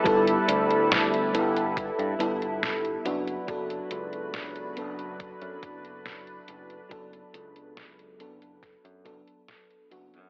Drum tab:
HH |xxxxxxxxxxxxxxxx|xxxxxxxxxxxxxxxx|xxxxxxxxxxxxxxxx|
SD |----o-------o---|----o-------o---|----o---o---o---|
BD |o-------o-------|o-------o-o-----|o-------o-o-----|